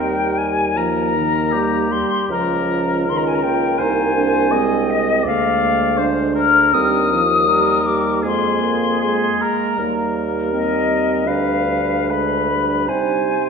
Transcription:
Already playing: bassoon D#2, clarinet C4, oboe A#4
0.00 french horn G3, flute G5
0.38 flute G#5
0.75 french horn F3, clarinet A#3, oboe A#4, flute A#5
1.15 french horn D#3
1.51 french horn G3, oboe G4
1.92 french horn G3, flute C6
2.29 bassoon C#2, french horn F3, clarinet C#4, oboe A#4, flute A#5
3.05 french horn D#3, clarinet F4, oboe A#4, flute C6
3.17 flute A#5
3.28 flute G#5
3.35 flute A#5
3.43 french horn A#3, flute G5
3.78 bassoon C2, clarinet D#4, oboe C5, flute G#5
4.16 clarinet D4
4.51 french horn G#3, clarinet C4, oboe D#5
4.90 flute D#5
5.24 bassoon D2, french horn G#3, clarinet A#3, oboe D5, flute F5
5.97 clarinet D4, oboe C5
6.35 oboe A#4, flute F6
6.73 bassoon D#2, french horn G3, clarinet C4, flute D#6
7.11 french horn F3
7.46 french horn G3, clarinet A#3, oboe A#4
7.85 french horn G3, flute D6
8.22 bassoon F2, french horn G#3, oboe G#4, flute C6
8.62 french horn A#3
9.01 french horn G#3, oboe G#4
9.41 oboe A#4, flute A#5
9.77 bassoon D#2, french horn G3, clarinet A#3, oboe A#4
10.52 french horn G3, clarinet C4, flute D#5
11.25 bassoon D2, clarinet D4, oboe B4, flute F5
11.68 clarinet D4
12.09 french horn G#3, oboe B4, flute B5
12.51 french horn G3
12.88 bassoon C3, clarinet D#4, oboe C5, flute G#5

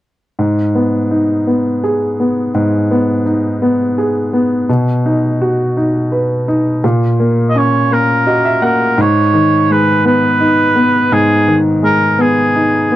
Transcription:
0.39 grand piano G#2
0.75 grand piano B3
1.11 grand piano D#4
1.47 grand piano B3
1.84 grand piano G#4
2.20 grand piano B3
2.54 grand piano G#2
2.91 grand piano B3
3.26 grand piano D#4
3.62 grand piano B3
3.98 grand piano G#4
4.33 grand piano B3
4.69 grand piano B2
5.06 grand piano D#4
5.42 grand piano F#4
5.77 grand piano D#4
6.12 grand piano B4
6.48 grand piano D#4
6.84 grand piano A#2
7.20 grand piano A#3
7.50 oboe D#5
7.56 grand piano C#4, oboe C#5
7.91 grand piano A#3, oboe A#4
8.27 grand piano F#4 D#5
8.45 grand piano E5
8.62 grand piano A#3 F#5, oboe A#4
8.98 grand piano G#2, oboe C#5
9.34 grand piano D#3
9.70 grand piano G#3, oboe B4
10.05 grand piano B3, oboe B4
10.41 grand piano D#4
10.76 grand piano B3
11.12 grand piano G#2, oboe G#4
11.48 grand piano D#3
11.83 grand piano G#3, oboe A#4
12.19 grand piano B3, oboe G#4
12.55 grand piano D#4
12.92 grand piano B3

